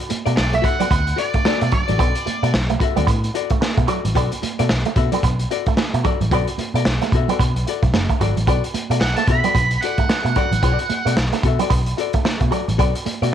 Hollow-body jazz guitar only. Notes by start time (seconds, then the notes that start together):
0.09 muted hollow-body jazz guitar stroke
0.26 F#4 A4 D5
0.36 muted hollow-body jazz guitar stroke
0.53 muted hollow-body jazz guitar stroke
0.62 F#4 A4 E5
0.80 F#4 A4 D5
0.90 muted hollow-body jazz guitar stroke
1.16 F#4 A4 D5
1.35 muted hollow-body jazz guitar stroke
1.45 F#4 A4 D5
1.73 muted hollow-body jazz guitar stroke
1.88 F#4 A4 D5
1.98 F#4 A4 D5
2.16 muted hollow-body jazz guitar stroke
2.26 muted hollow-body jazz guitar stroke
2.43 F#4 A4 D5
2.54 muted hollow-body jazz guitar stroke
2.70 muted hollow-body jazz guitar stroke
2.81 F#4 A4 E5
2.97 F#4 A4 D5
3.35 F#4 A4 D5
3.51 muted hollow-body jazz guitar stroke
3.62 muted hollow-body jazz guitar stroke
3.88 F#4 A4 D5
4.05 muted hollow-body jazz guitar stroke
4.15 F#4 A4 D5
4.32 muted hollow-body jazz guitar stroke
4.42 muted hollow-body jazz guitar stroke
4.59 F#4 A4 D5
4.87 muted hollow-body jazz guitar stroke
4.97 F#4 A4 E5
5.12 F#4 A4 D5
5.24 muted hollow-body jazz guitar stroke
5.51 F#4 A4 D5
5.66 muted hollow-body jazz guitar stroke
5.79 muted hollow-body jazz guitar stroke
6.04 F#4 A4 D5
6.21 muted hollow-body jazz guitar stroke
6.32 F#4 A4 D5
6.48 muted hollow-body jazz guitar stroke
6.60 muted hollow-body jazz guitar stroke
6.76 F#4 A4 D5
6.87 muted hollow-body jazz guitar stroke
7.03 muted hollow-body jazz guitar stroke
7.15 F#4 A4 E5
7.30 F#4 A4 D5
7.43 muted hollow-body jazz guitar stroke
7.68 F#4 A4 D5
7.84 muted hollow-body jazz guitar stroke
7.95 muted hollow-body jazz guitar stroke
8.21 F#4 A4 D5
8.38 muted hollow-body jazz guitar stroke
8.48 F#4 A4 D5
8.65 muted hollow-body jazz guitar stroke
8.75 muted hollow-body jazz guitar stroke
8.91 F#4 A4 D5
9.03 muted hollow-body jazz guitar stroke
9.19 muted hollow-body jazz guitar stroke
9.29 F#4 A4 E5
9.45 F#4 A4 D5
9.57 muted hollow-body jazz guitar stroke
9.84 F#4 A4 D5
9.99 muted hollow-body jazz guitar stroke
10.10 muted hollow-body jazz guitar stroke
10.36 F#4 A4 D5
10.53 muted hollow-body jazz guitar stroke
10.63 F#4 A4 D5
10.80 muted hollow-body jazz guitar stroke
10.91 muted hollow-body jazz guitar stroke
11.06 F#4 A4 D5
11.17 muted hollow-body jazz guitar stroke
11.35 muted hollow-body jazz guitar stroke
11.45 F#4 A4 E5
11.61 F#4 A4 D5
11.72 muted hollow-body jazz guitar stroke
11.98 F#4 A4 D5
12.14 muted hollow-body jazz guitar stroke
12.24 muted hollow-body jazz guitar stroke
12.51 F#4 A4 D5
12.68 muted hollow-body jazz guitar stroke
12.78 F#4 A4 D5
12.96 muted hollow-body jazz guitar stroke
13.06 muted hollow-body jazz guitar stroke
13.22 F#4 A4 D5